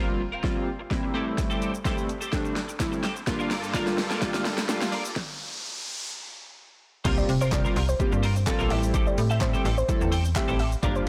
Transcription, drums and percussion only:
0.44 kick, snare
0.91 kick, snare
1.38 kick, snare, closed hi-hat, shaker
1.51 shaker
1.62 closed hi-hat, shaker
1.74 shaker
1.85 kick, snare, closed hi-hat, shaker
1.98 shaker
2.09 closed hi-hat, shaker
2.22 shaker
2.33 kick, snare, closed hi-hat, shaker
2.45 shaker
2.56 snare, closed hi-hat, shaker
2.69 shaker
2.80 kick, snare, closed hi-hat, shaker
2.93 shaker
3.03 snare, closed hi-hat, shaker
3.16 shaker
3.27 kick, snare, closed hi-hat, shaker
3.40 shaker
3.51 snare, open hi-hat, shaker
3.64 shaker
3.74 kick, snare, closed hi-hat, shaker
3.87 snare, shaker
3.98 snare, open hi-hat, shaker
4.11 snare, shaker
4.22 kick, snare, closed hi-hat, shaker
4.34 snare, shaker
4.45 snare, open hi-hat, shaker
4.58 snare, shaker
4.69 snare, closed hi-hat, shaker
4.81 snare, shaker
4.92 open hi-hat, shaker
5.05 shaker
5.16 kick, snare
7.05 kick, closed hi-hat, crash, shaker
7.18 shaker
7.29 open hi-hat, shaker
7.41 shaker
7.52 kick, clap, closed hi-hat, shaker
7.65 shaker
7.76 open hi-hat, shaker
7.89 shaker
8.00 kick, closed hi-hat, shaker
8.12 shaker
8.23 open hi-hat, shaker
8.36 shaker
8.47 kick, clap, closed hi-hat, shaker
8.60 shaker
8.70 open hi-hat, shaker
8.83 shaker
8.94 kick, closed hi-hat, shaker
9.07 shaker
9.18 open hi-hat, shaker
9.30 shaker
9.41 kick, clap, closed hi-hat, shaker
9.54 shaker
9.65 open hi-hat, shaker
9.78 shaker
9.89 kick, closed hi-hat, shaker
10.01 shaker
10.12 open hi-hat, shaker
10.25 shaker
10.36 kick, clap, closed hi-hat, shaker
10.49 shaker
10.59 open hi-hat, shaker
10.72 shaker
10.83 kick, closed hi-hat, shaker
10.95 shaker

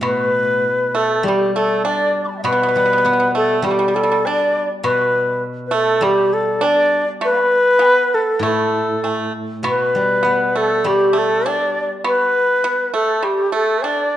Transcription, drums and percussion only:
0.03 high woodblock
1.24 high woodblock
1.85 low woodblock
2.45 high woodblock
3.64 high woodblock
4.25 low woodblock
4.84 high woodblock
6.02 high woodblock
6.63 low woodblock
7.22 high woodblock
7.81 low woodblock
8.43 high woodblock
9.04 low woodblock
9.64 high woodblock
10.86 high woodblock
11.45 low woodblock
12.05 high woodblock
13.23 high woodblock
13.82 low woodblock

